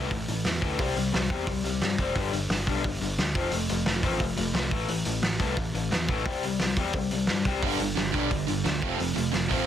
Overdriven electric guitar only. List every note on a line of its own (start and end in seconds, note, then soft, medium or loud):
0.00 0.11 E3 medium
0.00 0.11 A3 medium
0.11 0.26 A2 medium
0.11 0.26 E3 medium
0.28 0.43 A2 medium
0.28 0.44 E3 medium
0.46 0.60 A2 medium
0.46 0.60 E3 medium
0.61 0.77 A2 medium
0.61 0.77 E3 loud
0.61 0.78 A3 medium
0.79 0.95 C3 medium
0.79 0.95 G3 medium
0.79 0.95 C4 medium
0.96 1.11 C3 medium
0.96 1.11 G3 medium
1.13 1.28 C3 medium
1.13 1.28 G3 medium
1.30 1.46 C3 medium
1.30 1.46 G3 medium
1.30 1.46 C4 medium
1.47 1.62 C3 medium
1.47 1.63 G3 medium
1.64 1.80 C3 medium
1.64 1.80 G3 medium
1.82 1.97 C3 medium
1.82 1.97 G3 medium
1.99 2.15 C3 medium
1.99 2.15 G3 medium
1.99 2.15 C4 loud
2.15 2.31 G2 medium
2.15 2.31 D3 medium
2.15 2.32 G3 medium
2.32 2.48 G2 medium
2.32 2.48 D3 medium
2.50 2.65 G2 medium
2.50 2.65 D3 medium
2.67 2.83 G2 medium
2.67 2.83 D3 loud
2.67 2.83 G3 loud
2.84 3.00 G2 medium
2.84 3.00 D3 medium
3.01 3.17 G2 medium
3.01 3.17 D3 medium
3.19 3.34 G2 medium
3.19 3.34 D3 medium
3.35 3.51 F3 medium
3.35 3.51 A3 medium
3.35 3.51 C4 medium
3.52 3.67 F3 medium
3.52 3.68 A3 medium
3.70 3.85 F3 medium
3.70 3.85 A3 medium
3.87 4.02 F3 medium
3.87 4.02 A3 medium
4.04 4.19 F3 medium
4.04 4.20 A3 medium
4.04 4.20 C4 loud
4.21 4.36 F3 medium
4.21 4.36 A3 medium
4.37 4.53 F3 medium
4.37 4.53 A3 medium
4.55 4.70 F3 medium
4.55 4.70 A3 medium
4.71 4.87 A2 medium
4.71 4.88 E3 medium
4.71 4.88 A3 medium
4.88 5.04 A2 medium
4.88 5.04 E3 medium
5.06 5.21 A2 medium
5.06 5.22 E3 medium
5.22 5.38 A2 medium
5.22 5.38 E3 medium
5.39 5.55 A2 medium
5.39 5.56 E3 medium
5.39 5.56 A3 loud
5.56 5.72 A2 medium
5.56 5.72 E3 medium
5.74 5.90 A2 medium
5.74 5.90 E3 medium
5.91 6.07 A2 medium
5.91 6.07 E3 medium
6.09 6.25 A2 medium
6.09 6.25 E3 medium
6.09 6.25 A3 medium
6.26 6.42 C3 medium
6.26 6.42 G3 medium
6.26 6.42 C4 medium
6.44 6.59 C3 medium
6.44 6.59 G3 medium
6.60 6.75 C3 medium
6.60 6.76 G3 medium
6.78 6.94 C3 medium
6.78 6.94 G3 medium
6.78 6.94 C4 loud
6.95 7.10 C3 medium
6.95 7.10 G3 medium
7.11 7.27 C3 medium
7.11 7.27 G3 medium
7.29 7.44 C3 medium
7.29 7.44 G3 medium
7.46 7.62 C3 medium
7.46 7.62 G3 medium
7.46 7.62 C4 medium
7.63 7.79 G2 medium
7.63 7.79 D3 medium
7.63 7.79 G3 medium
7.80 7.96 G2 medium
7.80 7.96 D3 medium
7.97 8.12 G2 medium
7.97 8.12 D3 medium
8.14 8.30 G2 medium
8.14 8.30 D3 medium
8.14 8.30 G3 loud
8.31 8.46 G2 medium
8.31 8.46 D3 medium
8.48 8.63 G2 medium
8.48 8.63 D3 medium
8.64 8.80 G2 medium
8.64 8.80 D3 medium
8.82 8.97 F3 medium
8.82 8.97 A3 medium
8.82 8.99 C4 medium
8.98 9.14 F3 medium
8.98 9.14 A3 medium
9.16 9.31 F3 medium
9.16 9.32 A3 medium
9.32 9.48 F3 medium
9.32 9.49 A3 medium
9.50 9.65 F3 medium
9.50 9.65 A3 medium
9.50 9.66 C4 loud